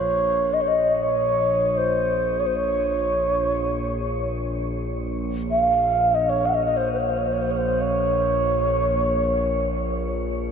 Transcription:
0.00 2.25 A#1 medium
0.00 5.98 F4 medium
0.00 0.55 C#5 medium
0.54 0.63 D#5 medium
0.61 0.69 C#5 medium
0.67 0.94 D#5 medium
0.94 1.04 D#5 medium
1.02 1.79 C#5 medium
1.78 2.41 C5 medium
2.26 10.52 A#1 medium
2.40 2.48 C#5 medium
2.47 2.57 C5 medium
2.55 4.30 C#5 medium
5.51 6.16 F5 medium
6.15 6.31 D#5 medium
6.29 6.47 C#5 medium
6.45 6.50 F5 medium
6.45 6.56 F#5 medium
6.54 6.65 D#5 medium
6.65 6.78 D#5 medium
6.77 6.92 C5 medium
6.93 7.02 C5 medium
7.00 7.12 C#5 medium
7.10 7.20 C5 medium
7.18 7.29 C#5 medium
7.27 7.35 C5 medium
7.33 7.43 C#5 medium
7.42 7.52 C5 medium
7.51 7.58 C#5 medium
7.57 7.83 C5 medium
7.81 10.10 C#5 medium

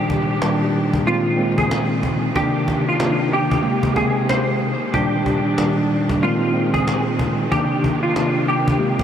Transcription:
0.00 1.06 D#2 medium
0.00 0.38 A#2 loud
0.00 0.38 D#3 medium
0.00 1.06 D#3 medium
0.00 0.38 G3 medium
0.00 0.38 D4 loud
0.00 1.06 D4 medium
0.00 0.57 G4 loud
0.00 1.06 G4 medium
0.10 cajon bass medium
0.42 1.04 A#2 medium
0.42 1.05 D#3 medium
0.42 1.07 G3 medium
0.42 1.07 D4 loud
0.42 cajon slap loud
0.42 cajon slap medium
0.74 cajon slap soft
0.93 cajon bass loud
1.05 1.35 A#2 medium
1.05 2.34 A#2 medium
1.05 1.35 D#3 medium
1.05 4.90 D#3 medium
1.05 1.36 G#3 medium
1.05 2.34 G#3 medium
1.05 2.34 C4 medium
1.05 1.36 C4 loud
1.05 1.55 F4 medium
1.05 cajon slap medium
1.36 2.28 A#2 loud
1.36 2.28 D#3 medium
1.36 2.28 G#3 medium
1.36 2.29 C4 loud
1.36 cajon slap soft
1.58 1.87 G#4 medium
1.58 cajon bass loud
1.71 cajon slap loud
1.71 cajon slap medium
2.03 cajon bass loud
2.35 2.96 C3 loud
2.35 3.63 C3 medium
2.35 2.96 D#3 medium
2.35 4.91 A#3 medium
2.35 2.96 A#3 medium
2.35 3.63 D4 medium
2.35 2.96 D4 loud
2.35 2.84 G4 loud
2.35 cajon bass loud
2.68 cajon bass loud
2.89 3.30 F4 medium
3.00 3.61 C3 medium
3.00 3.65 D#3 medium
3.00 3.62 A#3 medium
3.00 3.66 D4 loud
3.00 cajon slap loud
3.00 cajon slap medium
3.32 3.93 G4 medium
3.32 cajon slap soft
3.51 cajon bass loud
3.62 3.93 C3 medium
3.62 4.92 C3 medium
3.62 3.94 G#3 medium
3.62 3.94 A#3 medium
3.62 3.94 G4 medium
3.62 cajon slap medium
3.83 cajon bass loud
3.94 4.72 C3 loud
3.94 4.72 G#3 medium
3.94 4.72 A#3 medium
3.94 4.26 G#4 medium
3.94 4.72 G5 loud
3.94 cajon bass medium
4.29 4.58 C5 medium
4.29 cajon slap loud
4.93 6.22 D#2 medium
4.93 5.54 A#2 medium
4.93 5.54 D#3 medium
4.93 6.22 D#3 medium
4.93 5.54 G3 medium
4.93 6.22 D4 medium
4.93 5.55 D4 loud
4.93 5.74 G4 loud
4.93 cajon bass loud
5.26 cajon bass loud
5.58 6.20 A#2 medium
5.58 6.21 D#3 medium
5.58 6.23 G3 medium
5.58 6.23 D4 loud
5.58 cajon slap loud
5.58 cajon slap medium
5.90 cajon slap soft
6.09 cajon bass loud
6.22 6.51 A#2 medium
6.22 7.51 A#2 medium
6.22 6.51 D#3 medium
6.22 9.04 D#3 medium
6.22 6.52 G#3 medium
6.22 7.51 G#3 medium
6.22 6.52 C4 loud
6.22 7.51 C4 medium
6.22 6.71 F4 medium
6.22 cajon slap medium
6.52 7.44 A#2 loud
6.52 7.44 D#3 medium
6.52 7.45 G#3 medium
6.52 7.45 C4 loud
6.52 cajon slap soft
6.74 7.03 G#4 medium
6.74 cajon bass loud
6.88 cajon slap loud
7.19 cajon bass loud
7.51 8.12 C3 loud
7.51 9.04 C3 medium
7.51 8.12 D#3 medium
7.51 8.12 A#3 medium
7.51 9.04 A#3 medium
7.51 8.80 D4 medium
7.51 8.12 D4 loud
7.51 8.00 G4 loud
7.51 cajon bass loud
7.84 cajon bass medium
8.03 8.46 F4 medium
8.16 8.77 C3 medium
8.16 8.81 D#3 medium
8.16 8.78 A#3 medium
8.16 8.82 D4 loud
8.16 cajon slap loud
8.16 cajon slap medium
8.48 9.04 G4 medium
8.48 cajon slap soft
8.68 cajon bass loud
8.78 9.04 C3 medium
8.78 9.04 G#3 medium
8.78 9.04 A#3 medium
8.78 9.04 G4 loud
8.78 cajon slap medium
8.99 cajon bass loud
8.99 cajon slap soft

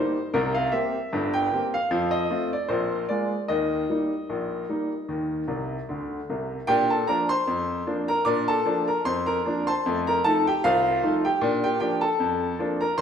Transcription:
0.00 0.16 G3 soft
0.00 0.16 A#3 soft
0.00 0.17 D#4 medium
0.00 0.25 C5 medium
0.34 0.67 C2 medium
0.34 0.67 C3 medium
0.34 0.55 A#4 medium
0.55 0.73 F5 medium
0.72 0.94 A#3 soft
0.72 0.95 C4 medium
0.72 0.95 G4 medium
0.72 1.30 E5 medium
1.13 1.46 G1 medium
1.13 1.46 G2 medium
1.34 1.65 G5 loud
1.52 1.74 A#3 medium
1.52 1.74 C4 soft
1.52 1.75 G4 medium
1.74 2.11 F5 medium
1.91 2.24 F2 medium
1.91 2.24 F3 medium
2.11 2.49 D#5 medium
2.30 2.52 A3 medium
2.30 2.52 C4 medium
2.30 2.52 F4 medium
2.53 2.70 D5 medium
2.68 3.03 A#1 medium
2.68 3.03 A#2 medium
2.68 3.01 C5 medium
3.09 3.32 G#3 soft
3.09 3.32 A#3 soft
3.09 3.32 F4 soft
3.09 3.41 D5 medium
3.48 3.83 D#2 medium
3.48 3.83 D#3 medium
3.48 6.23 D#5 medium
3.90 4.11 G3 soft
3.90 4.12 A#3 soft
3.90 4.12 D#4 soft
4.29 4.63 A#1 medium
4.29 4.63 A#2 medium
4.69 4.91 G3 soft
4.69 4.91 A#3 soft
4.69 4.92 D#4 soft
5.08 5.42 D#2 medium
5.08 5.42 D#3 medium
5.47 5.78 C2 medium
5.47 5.77 C3 medium
5.89 6.19 D2 medium
5.89 6.18 D3 medium
6.29 6.59 C2 medium
6.29 6.58 C3 medium
6.67 7.01 A#2 loud
6.67 6.90 D4 medium
6.67 6.88 G4 medium
6.67 6.89 G5 loud
6.90 7.07 A4 medium
6.90 7.07 A5 medium
7.07 7.30 F3 medium
7.07 7.30 A#3 medium
7.07 7.30 D4 medium
7.07 7.28 A#4 medium
7.07 7.29 A#5 loud
7.29 8.04 C5 medium
7.29 7.92 C6 loud
7.47 7.80 F2 medium
7.87 8.08 F3 medium
7.87 8.09 A#3 medium
7.87 8.08 D4 medium
8.08 8.25 A#4 medium
8.08 8.26 A#5 loud
8.25 8.59 A#2 medium
8.25 8.49 D4 medium
8.25 8.46 D5 medium
8.25 8.47 D6 loud
8.48 8.85 A4 medium
8.48 8.85 A5 loud
8.66 8.87 F3 medium
8.66 8.87 A#3 medium
8.66 8.88 D4 medium
8.88 9.04 A#4 medium
8.88 9.05 A#5 medium
9.05 9.38 F2 medium
9.05 9.25 C5 medium
9.05 9.26 C6 loud
9.26 9.63 A#4 medium
9.26 9.63 A#5 medium
9.46 9.67 F3 medium
9.46 9.67 A#3 medium
9.46 9.67 D4 medium
9.67 10.03 C5 medium
9.67 10.03 A5 medium
9.67 9.98 C6 loud
9.86 10.18 F2 loud
9.86 10.08 A3 medium
10.07 10.23 A#4 medium
10.07 10.24 A#5 loud
10.24 10.46 F3 medium
10.24 10.46 A3 medium
10.24 10.47 D#4 medium
10.24 10.44 A4 medium
10.24 10.45 A5 loud
10.47 10.63 G4 medium
10.47 10.63 G5 loud
10.64 10.97 C2 medium
10.64 11.20 F4 medium
10.64 11.20 C5 medium
10.64 11.12 F5 loud
11.03 11.24 F3 medium
11.03 11.24 A3 medium
11.03 11.25 D#4 medium
11.25 11.61 G4 medium
11.25 11.55 G5 medium
11.41 11.75 A#2 loud
11.41 11.64 D4 medium
11.64 11.80 G4 medium
11.64 11.79 G5 loud
11.80 12.02 F3 medium
11.80 12.03 A#3 medium
11.80 12.03 D4 medium
11.80 12.01 G4 medium
11.80 12.02 G5 loud
12.01 12.77 A4 medium
12.01 12.64 A5 medium
12.20 12.53 F2 medium
12.59 12.81 F3 medium
12.59 12.81 A#3 medium
12.59 12.82 D4 medium
12.81 12.98 A#4 medium
12.81 12.98 A#5 medium
12.98 13.01 D#3 loud
12.98 13.01 C6 loud

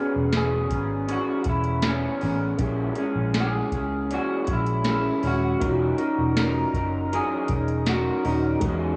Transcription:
0.00 0.32 B3 soft
0.00 2.55 B3 medium
0.00 0.33 C#4 medium
0.00 2.56 C#4 medium
0.00 2.56 F#4 medium
0.00 0.34 G#4 medium
0.00 2.57 G#4 medium
0.16 0.70 E1 medium
0.33 0.71 E3 medium
0.33 0.71 B3 medium
0.33 0.70 C#4 medium
0.33 0.69 G#4 medium
0.33 snare loud
0.33 closed hi-hat medium
0.37 1.12 G#4 medium
0.70 1.16 G#1 medium
0.70 1.07 B3 soft
0.70 1.07 C#4 soft
0.70 1.08 G#4 medium
0.70 kick medium
0.70 closed hi-hat medium
1.07 1.46 E3 medium
1.07 1.46 B3 medium
1.07 1.46 C#4 medium
1.07 1.44 G#4 medium
1.07 closed hi-hat medium
1.12 1.49 F#4 medium
1.44 2.07 E1 medium
1.44 1.84 B3 soft
1.44 1.84 C#4 soft
1.44 1.84 G#4 soft
1.44 kick medium
1.44 closed hi-hat medium
1.49 1.87 E4 medium
1.64 closed hi-hat soft
1.82 2.22 E3 medium
1.82 2.22 B3 medium
1.82 2.22 C#4 medium
1.82 2.20 G#4 medium
1.82 snare loud
1.82 closed hi-hat medium
1.88 2.39 C#4 medium
2.21 2.53 A1 medium
2.21 2.59 B3 medium
2.21 2.58 C#4 soft
2.21 2.59 G#4 medium
2.21 open hi-hat soft
2.58 2.90 A#1 loud
2.58 2.97 A#2 medium
2.58 2.97 E3 medium
2.58 2.97 G#3 medium
2.58 4.81 A#3 medium
2.58 4.81 C#4 medium
2.58 2.97 C#4 medium
2.58 4.82 E4 medium
2.58 2.96 G#4 medium
2.58 kick loud
2.58 closed hi-hat medium
2.62 4.83 G#4 medium
2.95 3.35 C#4 medium
2.95 3.35 G#4 medium
2.95 closed hi-hat medium
3.00 3.35 G#3 medium
3.15 3.61 A#1 medium
3.34 3.73 E3 medium
3.34 3.74 G#3 medium
3.34 3.74 C#4 medium
3.34 3.72 G#4 medium
3.34 snare loud
3.34 closed hi-hat medium
3.40 4.13 G#4 medium
3.72 4.17 C#2 medium
3.72 4.10 G#3 soft
3.72 4.10 C#4 soft
3.72 4.11 G#4 soft
3.72 kick medium
3.72 closed hi-hat medium
4.11 4.48 A#2 medium
4.11 4.49 E3 medium
4.11 4.49 G#3 medium
4.11 4.48 C#4 medium
4.11 4.43 F#4 medium
4.11 4.47 G#4 medium
4.11 closed hi-hat medium
4.44 5.09 A#1 medium
4.44 4.50 F#4 medium
4.44 4.86 G#4 medium
4.44 kick medium
4.44 closed hi-hat medium
4.49 4.85 G#3 soft
4.49 4.86 C#4 soft
4.49 4.89 E4 medium
4.66 closed hi-hat soft
4.84 5.23 E3 medium
4.84 5.24 G#3 medium
4.84 5.57 A#3 medium
4.84 5.59 C#4 soft
4.84 5.23 C#4 medium
4.84 5.61 E4 soft
4.84 5.62 G#4 soft
4.84 5.21 G#4 medium
4.84 snare loud
4.84 closed hi-hat medium
4.91 5.27 E4 medium
5.23 5.54 D#1 medium
5.23 5.60 G#3 medium
5.23 5.60 C#4 medium
5.23 5.61 G#4 medium
5.23 open hi-hat soft
5.27 6.39 F#4 medium
5.59 5.92 E1 loud
5.59 5.98 E3 medium
5.59 5.99 F#3 medium
5.59 8.19 A#3 medium
5.59 8.20 C#4 medium
5.59 5.98 C#4 medium
5.59 5.98 D#4 medium
5.59 8.21 D#4 medium
5.59 5.96 A#4 medium
5.59 kick loud
5.59 closed hi-hat medium
5.64 5.69 F4 medium
5.71 8.24 F#4 medium
5.98 6.36 C#4 soft
5.98 6.37 D#4 medium
5.98 6.36 A#4 medium
5.98 closed hi-hat medium
6.18 6.63 E1 medium
6.36 6.74 F#3 medium
6.36 6.74 C#4 medium
6.36 6.74 D#4 medium
6.36 6.73 A#4 medium
6.36 7.09 A#4 medium
6.36 snare loud
6.36 closed hi-hat medium
6.74 7.19 F#1 medium
6.74 7.12 C#4 soft
6.74 7.12 D#4 soft
6.74 7.12 A#4 medium
6.74 kick medium
6.74 closed hi-hat medium
7.12 7.50 E3 medium
7.12 7.50 F#3 medium
7.12 7.50 C#4 medium
7.12 7.50 D#4 medium
7.12 7.89 G#4 medium
7.12 7.49 A#4 medium
7.12 closed hi-hat medium
7.48 8.10 E1 loud
7.48 7.87 C#4 soft
7.48 7.87 D#4 soft
7.48 7.87 A#4 soft
7.48 kick medium
7.48 closed hi-hat medium
7.68 closed hi-hat soft
7.86 8.25 F#3 medium
7.86 8.25 C#4 medium
7.86 8.25 D#4 medium
7.86 8.41 F#4 medium
7.86 8.24 A#4 medium
7.86 snare loud
7.86 closed hi-hat medium
8.23 8.55 D#1 medium
8.23 8.61 A#3 soft
8.23 8.60 C#4 soft
8.23 8.63 C#4 medium
8.23 8.61 D#4 soft
8.23 8.62 D#4 medium
8.23 8.63 F#4 medium
8.23 8.62 A#4 medium
8.23 open hi-hat soft
8.60 8.92 E2 loud
8.60 8.96 E3 medium
8.60 8.96 F#3 medium
8.60 8.96 G#3 medium
8.60 8.96 B3 loud
8.60 8.96 C#4 medium
8.60 8.96 D#4 medium
8.60 kick loud
8.60 closed hi-hat medium
8.64 8.96 F#4 medium
8.64 8.96 G#4 loud

